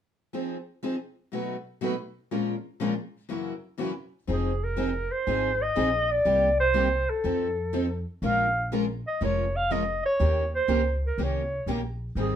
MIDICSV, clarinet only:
0, 0, Header, 1, 2, 480
1, 0, Start_track
1, 0, Key_signature, -4, "minor"
1, 0, Tempo, 493016
1, 327, Time_signature, 4, 2, 24, 8
1, 12031, End_track
2, 0, Start_track
2, 0, Title_t, "Clarinet"
2, 0, Program_c, 0, 71
2, 4206, Note_on_c, 0, 68, 70
2, 4515, Note_on_c, 0, 70, 75
2, 4529, Note_off_c, 0, 68, 0
2, 4982, Note_on_c, 0, 72, 88
2, 4996, Note_off_c, 0, 70, 0
2, 5469, Note_on_c, 0, 75, 100
2, 5484, Note_off_c, 0, 72, 0
2, 5950, Note_on_c, 0, 74, 97
2, 5965, Note_off_c, 0, 75, 0
2, 6420, Note_off_c, 0, 74, 0
2, 6424, Note_on_c, 0, 72, 86
2, 6909, Note_on_c, 0, 69, 77
2, 6924, Note_off_c, 0, 72, 0
2, 7859, Note_off_c, 0, 69, 0
2, 8032, Note_on_c, 0, 77, 92
2, 8468, Note_off_c, 0, 77, 0
2, 8836, Note_on_c, 0, 75, 82
2, 8974, Note_off_c, 0, 75, 0
2, 9000, Note_on_c, 0, 73, 90
2, 9310, Note_on_c, 0, 77, 92
2, 9324, Note_off_c, 0, 73, 0
2, 9463, Note_on_c, 0, 75, 83
2, 9478, Note_off_c, 0, 77, 0
2, 9773, Note_off_c, 0, 75, 0
2, 9791, Note_on_c, 0, 73, 93
2, 10225, Note_off_c, 0, 73, 0
2, 10277, Note_on_c, 0, 72, 79
2, 10708, Note_off_c, 0, 72, 0
2, 10773, Note_on_c, 0, 70, 72
2, 10935, Note_on_c, 0, 73, 75
2, 10950, Note_off_c, 0, 70, 0
2, 11390, Note_off_c, 0, 73, 0
2, 11877, Note_on_c, 0, 68, 71
2, 12031, Note_off_c, 0, 68, 0
2, 12031, End_track
0, 0, End_of_file